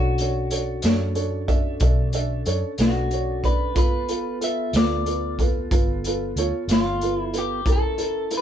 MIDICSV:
0, 0, Header, 1, 6, 480
1, 0, Start_track
1, 0, Key_signature, 2, "minor"
1, 0, Tempo, 649351
1, 2786, Time_signature, 12, 3, 24, 8
1, 6220, End_track
2, 0, Start_track
2, 0, Title_t, "Clean electric guitar"
2, 0, Program_c, 0, 27
2, 0, Note_on_c, 0, 66, 69
2, 1816, Note_off_c, 0, 66, 0
2, 2077, Note_on_c, 0, 66, 63
2, 2552, Note_on_c, 0, 71, 75
2, 2566, Note_off_c, 0, 66, 0
2, 2772, Note_off_c, 0, 71, 0
2, 2793, Note_on_c, 0, 71, 80
2, 3240, Note_off_c, 0, 71, 0
2, 3282, Note_on_c, 0, 76, 76
2, 3521, Note_off_c, 0, 76, 0
2, 3524, Note_on_c, 0, 74, 73
2, 3965, Note_off_c, 0, 74, 0
2, 4971, Note_on_c, 0, 65, 67
2, 5311, Note_off_c, 0, 65, 0
2, 5311, Note_on_c, 0, 64, 67
2, 5452, Note_off_c, 0, 64, 0
2, 5459, Note_on_c, 0, 67, 74
2, 5688, Note_off_c, 0, 67, 0
2, 5709, Note_on_c, 0, 69, 83
2, 6137, Note_off_c, 0, 69, 0
2, 6190, Note_on_c, 0, 71, 80
2, 6220, Note_off_c, 0, 71, 0
2, 6220, End_track
3, 0, Start_track
3, 0, Title_t, "Upright piano"
3, 0, Program_c, 1, 0
3, 0, Note_on_c, 1, 62, 55
3, 0, Note_on_c, 1, 69, 55
3, 0, Note_on_c, 1, 73, 66
3, 81, Note_off_c, 1, 62, 0
3, 82, Note_off_c, 1, 69, 0
3, 83, Note_off_c, 1, 73, 0
3, 157, Note_on_c, 1, 62, 46
3, 158, Note_on_c, 1, 69, 44
3, 159, Note_on_c, 1, 73, 52
3, 331, Note_off_c, 1, 62, 0
3, 332, Note_off_c, 1, 69, 0
3, 332, Note_off_c, 1, 73, 0
3, 382, Note_on_c, 1, 69, 40
3, 386, Note_on_c, 1, 62, 45
3, 388, Note_on_c, 1, 73, 50
3, 564, Note_off_c, 1, 69, 0
3, 566, Note_off_c, 1, 62, 0
3, 567, Note_off_c, 1, 73, 0
3, 628, Note_on_c, 1, 62, 59
3, 629, Note_on_c, 1, 69, 52
3, 632, Note_on_c, 1, 73, 58
3, 807, Note_off_c, 1, 62, 0
3, 808, Note_off_c, 1, 69, 0
3, 809, Note_off_c, 1, 73, 0
3, 853, Note_on_c, 1, 69, 48
3, 853, Note_on_c, 1, 73, 56
3, 856, Note_on_c, 1, 62, 52
3, 1039, Note_off_c, 1, 69, 0
3, 1039, Note_off_c, 1, 73, 0
3, 1041, Note_off_c, 1, 62, 0
3, 1092, Note_on_c, 1, 69, 51
3, 1095, Note_on_c, 1, 76, 64
3, 1096, Note_on_c, 1, 62, 57
3, 1279, Note_off_c, 1, 69, 0
3, 1280, Note_off_c, 1, 76, 0
3, 1281, Note_off_c, 1, 62, 0
3, 1344, Note_on_c, 1, 62, 52
3, 1349, Note_on_c, 1, 69, 47
3, 1349, Note_on_c, 1, 76, 61
3, 1525, Note_off_c, 1, 62, 0
3, 1527, Note_off_c, 1, 69, 0
3, 1527, Note_off_c, 1, 76, 0
3, 1583, Note_on_c, 1, 69, 52
3, 1585, Note_on_c, 1, 62, 57
3, 1590, Note_on_c, 1, 76, 62
3, 1764, Note_off_c, 1, 69, 0
3, 1765, Note_off_c, 1, 62, 0
3, 1768, Note_off_c, 1, 76, 0
3, 1822, Note_on_c, 1, 69, 46
3, 1825, Note_on_c, 1, 62, 53
3, 1826, Note_on_c, 1, 73, 61
3, 2004, Note_off_c, 1, 69, 0
3, 2005, Note_off_c, 1, 62, 0
3, 2006, Note_off_c, 1, 73, 0
3, 2062, Note_on_c, 1, 71, 48
3, 2064, Note_on_c, 1, 62, 47
3, 2064, Note_on_c, 1, 69, 39
3, 2244, Note_off_c, 1, 71, 0
3, 2245, Note_off_c, 1, 62, 0
3, 2245, Note_off_c, 1, 69, 0
3, 2313, Note_on_c, 1, 69, 38
3, 2314, Note_on_c, 1, 62, 42
3, 2319, Note_on_c, 1, 73, 51
3, 2490, Note_off_c, 1, 62, 0
3, 2490, Note_off_c, 1, 69, 0
3, 2493, Note_off_c, 1, 73, 0
3, 2545, Note_on_c, 1, 69, 39
3, 2546, Note_on_c, 1, 74, 47
3, 2547, Note_on_c, 1, 62, 39
3, 2725, Note_off_c, 1, 69, 0
3, 2726, Note_off_c, 1, 74, 0
3, 2727, Note_off_c, 1, 62, 0
3, 2774, Note_on_c, 1, 65, 58
3, 2782, Note_on_c, 1, 69, 52
3, 2783, Note_on_c, 1, 71, 59
3, 2960, Note_off_c, 1, 65, 0
3, 2964, Note_off_c, 1, 69, 0
3, 2964, Note_off_c, 1, 71, 0
3, 3024, Note_on_c, 1, 69, 44
3, 3026, Note_on_c, 1, 65, 46
3, 3029, Note_on_c, 1, 71, 52
3, 3205, Note_off_c, 1, 69, 0
3, 3206, Note_off_c, 1, 65, 0
3, 3207, Note_off_c, 1, 71, 0
3, 3259, Note_on_c, 1, 69, 44
3, 3260, Note_on_c, 1, 65, 44
3, 3262, Note_on_c, 1, 71, 49
3, 3442, Note_off_c, 1, 69, 0
3, 3443, Note_off_c, 1, 65, 0
3, 3444, Note_off_c, 1, 71, 0
3, 3521, Note_on_c, 1, 69, 43
3, 3522, Note_on_c, 1, 65, 49
3, 3527, Note_on_c, 1, 71, 51
3, 3694, Note_off_c, 1, 65, 0
3, 3694, Note_off_c, 1, 69, 0
3, 3696, Note_off_c, 1, 71, 0
3, 3743, Note_on_c, 1, 65, 42
3, 3744, Note_on_c, 1, 69, 41
3, 3751, Note_on_c, 1, 71, 46
3, 3924, Note_off_c, 1, 65, 0
3, 3925, Note_off_c, 1, 69, 0
3, 3929, Note_off_c, 1, 71, 0
3, 3990, Note_on_c, 1, 65, 48
3, 3994, Note_on_c, 1, 69, 45
3, 3999, Note_on_c, 1, 71, 57
3, 4168, Note_off_c, 1, 65, 0
3, 4170, Note_off_c, 1, 69, 0
3, 4173, Note_off_c, 1, 71, 0
3, 4222, Note_on_c, 1, 65, 58
3, 4228, Note_on_c, 1, 71, 63
3, 4234, Note_on_c, 1, 69, 49
3, 4404, Note_off_c, 1, 65, 0
3, 4407, Note_off_c, 1, 71, 0
3, 4410, Note_off_c, 1, 69, 0
3, 4483, Note_on_c, 1, 65, 55
3, 4488, Note_on_c, 1, 71, 63
3, 4492, Note_on_c, 1, 69, 49
3, 4654, Note_off_c, 1, 65, 0
3, 4657, Note_off_c, 1, 71, 0
3, 4659, Note_off_c, 1, 69, 0
3, 4716, Note_on_c, 1, 69, 51
3, 4719, Note_on_c, 1, 65, 53
3, 4722, Note_on_c, 1, 73, 64
3, 4891, Note_off_c, 1, 69, 0
3, 4892, Note_off_c, 1, 65, 0
3, 4894, Note_off_c, 1, 73, 0
3, 4953, Note_on_c, 1, 65, 47
3, 4957, Note_on_c, 1, 69, 43
3, 4958, Note_on_c, 1, 73, 51
3, 5129, Note_off_c, 1, 65, 0
3, 5131, Note_off_c, 1, 69, 0
3, 5132, Note_off_c, 1, 73, 0
3, 5197, Note_on_c, 1, 65, 45
3, 5197, Note_on_c, 1, 69, 44
3, 5198, Note_on_c, 1, 71, 50
3, 5371, Note_off_c, 1, 65, 0
3, 5371, Note_off_c, 1, 69, 0
3, 5371, Note_off_c, 1, 71, 0
3, 5423, Note_on_c, 1, 69, 40
3, 5425, Note_on_c, 1, 65, 45
3, 5428, Note_on_c, 1, 71, 48
3, 5604, Note_off_c, 1, 69, 0
3, 5605, Note_off_c, 1, 65, 0
3, 5606, Note_off_c, 1, 71, 0
3, 5668, Note_on_c, 1, 64, 59
3, 5672, Note_on_c, 1, 70, 65
3, 5676, Note_on_c, 1, 69, 56
3, 5846, Note_off_c, 1, 64, 0
3, 5848, Note_off_c, 1, 70, 0
3, 5850, Note_off_c, 1, 69, 0
3, 5897, Note_on_c, 1, 64, 51
3, 5900, Note_on_c, 1, 69, 44
3, 5902, Note_on_c, 1, 70, 54
3, 6080, Note_off_c, 1, 64, 0
3, 6082, Note_off_c, 1, 69, 0
3, 6083, Note_off_c, 1, 70, 0
3, 6144, Note_on_c, 1, 64, 46
3, 6144, Note_on_c, 1, 70, 53
3, 6147, Note_on_c, 1, 69, 45
3, 6220, Note_off_c, 1, 64, 0
3, 6220, Note_off_c, 1, 69, 0
3, 6220, Note_off_c, 1, 70, 0
3, 6220, End_track
4, 0, Start_track
4, 0, Title_t, "Tonewheel organ"
4, 0, Program_c, 2, 16
4, 0, Note_on_c, 2, 61, 54
4, 0, Note_on_c, 2, 62, 57
4, 0, Note_on_c, 2, 69, 57
4, 2758, Note_off_c, 2, 62, 0
4, 2758, Note_off_c, 2, 69, 0
4, 2761, Note_off_c, 2, 61, 0
4, 2766, Note_on_c, 2, 65, 55
4, 2767, Note_on_c, 2, 69, 53
4, 2771, Note_on_c, 2, 59, 54
4, 5626, Note_off_c, 2, 65, 0
4, 5626, Note_off_c, 2, 69, 0
4, 5628, Note_off_c, 2, 59, 0
4, 5661, Note_on_c, 2, 61, 57
4, 5664, Note_on_c, 2, 81, 56
4, 5669, Note_on_c, 2, 64, 55
4, 6220, Note_off_c, 2, 61, 0
4, 6220, Note_off_c, 2, 64, 0
4, 6220, Note_off_c, 2, 81, 0
4, 6220, End_track
5, 0, Start_track
5, 0, Title_t, "Fingered electric bass"
5, 0, Program_c, 3, 33
5, 0, Note_on_c, 3, 35, 77
5, 595, Note_off_c, 3, 35, 0
5, 619, Note_on_c, 3, 42, 80
5, 1313, Note_off_c, 3, 42, 0
5, 1338, Note_on_c, 3, 35, 79
5, 1793, Note_off_c, 3, 35, 0
5, 1823, Note_on_c, 3, 42, 68
5, 1935, Note_off_c, 3, 42, 0
5, 2059, Note_on_c, 3, 35, 79
5, 2780, Note_off_c, 3, 35, 0
5, 2780, Note_on_c, 3, 31, 73
5, 3473, Note_off_c, 3, 31, 0
5, 3499, Note_on_c, 3, 38, 79
5, 4193, Note_off_c, 3, 38, 0
5, 4225, Note_on_c, 3, 31, 77
5, 4675, Note_off_c, 3, 31, 0
5, 4702, Note_on_c, 3, 38, 65
5, 4814, Note_off_c, 3, 38, 0
5, 4935, Note_on_c, 3, 31, 79
5, 5661, Note_off_c, 3, 31, 0
5, 5661, Note_on_c, 3, 30, 80
5, 6220, Note_off_c, 3, 30, 0
5, 6220, End_track
6, 0, Start_track
6, 0, Title_t, "Drums"
6, 133, Note_on_c, 9, 42, 51
6, 207, Note_off_c, 9, 42, 0
6, 374, Note_on_c, 9, 42, 57
6, 448, Note_off_c, 9, 42, 0
6, 608, Note_on_c, 9, 42, 76
6, 628, Note_on_c, 9, 38, 91
6, 682, Note_off_c, 9, 42, 0
6, 702, Note_off_c, 9, 38, 0
6, 851, Note_on_c, 9, 42, 51
6, 925, Note_off_c, 9, 42, 0
6, 1096, Note_on_c, 9, 36, 61
6, 1097, Note_on_c, 9, 42, 47
6, 1170, Note_off_c, 9, 36, 0
6, 1171, Note_off_c, 9, 42, 0
6, 1329, Note_on_c, 9, 42, 72
6, 1336, Note_on_c, 9, 36, 91
6, 1403, Note_off_c, 9, 42, 0
6, 1410, Note_off_c, 9, 36, 0
6, 1572, Note_on_c, 9, 42, 51
6, 1646, Note_off_c, 9, 42, 0
6, 1815, Note_on_c, 9, 42, 46
6, 1889, Note_off_c, 9, 42, 0
6, 2053, Note_on_c, 9, 42, 63
6, 2073, Note_on_c, 9, 38, 83
6, 2127, Note_off_c, 9, 42, 0
6, 2147, Note_off_c, 9, 38, 0
6, 2297, Note_on_c, 9, 42, 48
6, 2371, Note_off_c, 9, 42, 0
6, 2541, Note_on_c, 9, 36, 56
6, 2543, Note_on_c, 9, 42, 45
6, 2615, Note_off_c, 9, 36, 0
6, 2617, Note_off_c, 9, 42, 0
6, 2777, Note_on_c, 9, 42, 68
6, 2778, Note_on_c, 9, 36, 86
6, 2851, Note_off_c, 9, 42, 0
6, 2852, Note_off_c, 9, 36, 0
6, 3019, Note_on_c, 9, 42, 49
6, 3093, Note_off_c, 9, 42, 0
6, 3263, Note_on_c, 9, 42, 50
6, 3337, Note_off_c, 9, 42, 0
6, 3499, Note_on_c, 9, 42, 76
6, 3519, Note_on_c, 9, 38, 98
6, 3572, Note_off_c, 9, 42, 0
6, 3592, Note_off_c, 9, 38, 0
6, 3742, Note_on_c, 9, 42, 52
6, 3816, Note_off_c, 9, 42, 0
6, 3982, Note_on_c, 9, 36, 56
6, 3986, Note_on_c, 9, 42, 49
6, 4056, Note_off_c, 9, 36, 0
6, 4060, Note_off_c, 9, 42, 0
6, 4222, Note_on_c, 9, 36, 95
6, 4222, Note_on_c, 9, 42, 74
6, 4296, Note_off_c, 9, 36, 0
6, 4296, Note_off_c, 9, 42, 0
6, 4466, Note_on_c, 9, 42, 56
6, 4540, Note_off_c, 9, 42, 0
6, 4705, Note_on_c, 9, 42, 53
6, 4779, Note_off_c, 9, 42, 0
6, 4943, Note_on_c, 9, 42, 70
6, 4962, Note_on_c, 9, 38, 86
6, 5016, Note_off_c, 9, 42, 0
6, 5036, Note_off_c, 9, 38, 0
6, 5184, Note_on_c, 9, 42, 51
6, 5258, Note_off_c, 9, 42, 0
6, 5422, Note_on_c, 9, 42, 50
6, 5496, Note_off_c, 9, 42, 0
6, 5660, Note_on_c, 9, 36, 92
6, 5662, Note_on_c, 9, 42, 71
6, 5734, Note_off_c, 9, 36, 0
6, 5736, Note_off_c, 9, 42, 0
6, 5898, Note_on_c, 9, 42, 50
6, 5972, Note_off_c, 9, 42, 0
6, 6139, Note_on_c, 9, 42, 48
6, 6213, Note_off_c, 9, 42, 0
6, 6220, End_track
0, 0, End_of_file